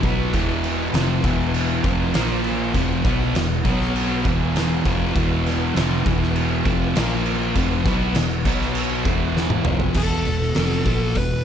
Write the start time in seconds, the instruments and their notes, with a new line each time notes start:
Already playing: tonewheel organ E4 B4 F#5
0.03 fingered electric bass B1, distorted electric guitar B2 F#3 B3, kick, crash
0.33 fingered electric bass E1, distorted electric guitar E2 B2 E3, kick, crash
0.64 crash
0.94 fingered electric bass F1, distorted electric guitar F2 C3 F3, snare, crash
1.24 fingered electric bass E1, distorted electric guitar E2 B2 E3, kick, crash
1.54 crash
1.84 fingered electric bass F1, distorted electric guitar F2 C3 F3, kick, crash
2.13 fingered electric bass A#1, distorted electric guitar A#2 F3 A#3, tonewheel organ A#3 F4 C5, snare, crash
2.44 crash
2.74 fingered electric bass F1, distorted electric guitar F2 C3 F3, tonewheel organ E4 B4 F#5, kick, crash
3.04 fingered electric bass B1, distorted electric guitar B2 F#3 B3, kick, crash
3.34 fingered electric bass E1, distorted electric guitar E2 B2, snare, crash
3.64 fingered electric bass B1, distorted electric guitar B2 F#3 B3, tonewheel organ B3 F#4 C#5, kick, crash
3.81 snare
3.96 crash
4.24 fingered electric bass E1, distorted electric guitar E2 B2 E3, tonewheel organ E4 B4 F#5, kick, crash
4.56 snare, crash
4.85 fingered electric bass F1, distorted electric guitar F2 C3 F3, kick, crash
5.15 fingered electric bass E1, distorted electric guitar E2 B2 E3, kick, crash
5.46 snare, crash
5.74 fingered electric bass F1, distorted electric guitar F2 C3 F3, snare, crash
6.05 fingered electric bass E1, distorted electric guitar E2 B2 E3, kick, crash
6.23 snare
6.36 crash
6.64 fingered electric bass F1, distorted electric guitar F2 C3 F3, kick, crash
6.95 fingered electric bass A#1, distorted electric guitar A#2 F3 A#3, tonewheel organ A#3 F4 C5, snare, crash
7.26 crash
7.55 fingered electric bass F1, distorted electric guitar F2 C3 F3, tonewheel organ E4 B4 F#5, kick, crash
7.85 fingered electric bass B1, distorted electric guitar B2 F#3 B3, kick, snare, crash
8.15 fingered electric bass E1, distorted electric guitar E2 B2, snare, crash
8.45 fingered electric bass B1, distorted electric guitar B2 F#3 B3, tonewheel organ B3 F#4 C#5, kick, crash
8.61 snare
8.75 crash
9.05 fingered electric bass E1, distorted electric guitar E2 B2 E3, tonewheel organ E4 B4 F#5, kick, crash
9.37 snare
9.50 high tom
9.65 fingered electric bass F1, distorted electric guitar F2 C3 F3, mid tom
9.80 floor tom
9.94 fingered electric bass E1, distorted electric guitar E2 B2 E3, tonewheel organ E3 B3 F#4, lead electric guitar A4, kick, crash
10.25 fingered electric bass E1, distorted electric guitar E2 B2, open hi-hat
10.41 snare
10.55 fingered electric bass F1, distorted electric guitar F2 C3 F3, snare, open hi-hat
10.72 snare
10.85 fingered electric bass A#1, distorted electric guitar A#2 F3 A#3, kick, open hi-hat
11.15 fingered electric bass E1, distorted electric guitar E2 B2, lead electric guitar B4, kick, open hi-hat